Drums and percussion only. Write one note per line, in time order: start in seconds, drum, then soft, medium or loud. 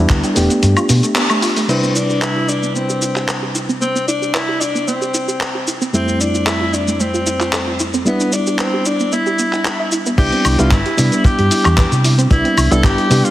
0.09 kick loud
0.09 clap loud
0.09 closed hi-hat medium
0.09 shaker soft
0.24 closed hi-hat soft
0.24 shaker soft
0.36 open hi-hat medium
0.36 shaker medium
0.50 closed hi-hat soft
0.50 shaker soft
0.63 closed hi-hat loud
0.63 shaker soft
0.77 closed hi-hat soft
0.77 high woodblock medium
0.77 shaker soft
0.89 open hi-hat loud
0.89 shaker medium
1.03 closed hi-hat soft
1.03 shaker soft
1.16 clap loud
1.16 closed hi-hat loud
1.16 shaker soft
1.30 closed hi-hat soft
1.30 high woodblock medium
1.30 shaker soft
1.42 open hi-hat loud
1.42 shaker medium
1.56 open hi-hat medium
1.56 shaker soft
1.69 crash medium
1.69 shaker soft
1.83 shaker soft
1.96 shaker medium
2.10 shaker soft
2.22 clap loud
2.22 shaker soft
2.49 shaker medium
2.63 shaker soft
2.75 shaker soft
2.90 shaker soft
3.02 shaker medium
3.16 clap soft
3.16 shaker soft
3.28 clap loud
3.28 shaker soft
3.55 shaker medium
3.69 shaker soft
3.82 shaker soft
3.96 shaker soft
4.09 shaker medium
4.23 shaker soft
4.35 clap loud
4.35 shaker soft
4.61 shaker medium
4.76 shaker soft
4.88 shaker soft
5.02 shaker soft
5.14 shaker medium
5.29 shaker soft
5.41 clap loud
5.41 shaker soft
5.68 shaker medium
5.82 shaker soft
5.94 shaker soft
6.08 shaker soft
6.21 shaker medium
6.35 shaker soft
6.47 clap loud
6.47 shaker soft
6.74 shaker medium
6.88 shaker soft
7.00 shaker soft
7.14 shaker soft
7.27 shaker medium
7.40 clap soft
7.40 shaker soft
7.53 clap loud
7.53 shaker soft
7.80 shaker medium
7.94 shaker soft
8.06 shaker soft
8.20 shaker soft
8.33 shaker medium
8.47 shaker soft
8.59 clap loud
8.59 shaker soft
8.86 shaker medium
9.00 shaker soft
9.12 shaker soft
9.26 shaker soft
9.39 shaker medium
9.53 clap soft
9.53 shaker soft
9.65 clap loud
9.65 shaker soft
9.92 shaker medium
10.06 shaker soft
10.18 kick loud
10.18 closed hi-hat medium
10.18 crash loud
10.18 shaker soft
10.32 closed hi-hat soft
10.45 open hi-hat loud
10.45 high woodblock medium
10.45 shaker medium
10.59 closed hi-hat soft
10.59 shaker soft
10.71 kick loud
10.71 clap loud
10.71 closed hi-hat loud
10.71 shaker soft
10.86 closed hi-hat soft
10.98 open hi-hat loud
10.98 shaker medium
11.12 closed hi-hat soft
11.12 shaker soft
11.24 kick loud
11.24 closed hi-hat medium
11.24 shaker soft
11.39 closed hi-hat soft
11.51 open hi-hat loud
11.51 shaker medium
11.65 clap soft
11.65 closed hi-hat soft
11.65 high woodblock medium
11.65 shaker soft
11.78 kick loud
11.78 clap loud
11.78 closed hi-hat loud
11.78 shaker soft
11.92 closed hi-hat soft
11.92 shaker soft
12.04 open hi-hat loud
12.04 shaker medium
12.19 closed hi-hat soft
12.19 shaker soft
12.31 kick loud
12.31 closed hi-hat medium
12.31 shaker soft
12.45 closed hi-hat soft
12.58 open hi-hat loud
12.58 high woodblock medium
12.58 shaker medium
12.72 closed hi-hat soft
12.72 shaker soft
12.84 kick loud
12.84 clap loud
12.84 closed hi-hat loud
12.84 shaker soft
12.98 closed hi-hat soft
13.11 open hi-hat loud
13.11 shaker medium
13.25 closed hi-hat soft
13.25 shaker soft